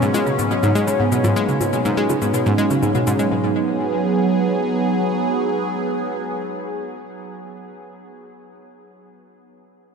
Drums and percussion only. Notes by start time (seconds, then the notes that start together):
0.02 cabasa
0.14 low bongo, cabasa
0.27 cabasa
0.39 cabasa
0.51 cabasa
0.63 cabasa
0.75 cabasa
0.88 cabasa
1.12 cabasa
1.24 low bongo, cabasa
1.36 cabasa
1.49 cabasa
1.61 low bongo, cabasa
1.73 cabasa
1.85 cabasa
1.97 cabasa
2.10 low bongo, cabasa
2.22 cabasa
2.34 cabasa
2.46 cabasa
2.58 cabasa
2.70 cabasa
2.83 cabasa
2.95 cabasa
3.07 cabasa
3.19 cabasa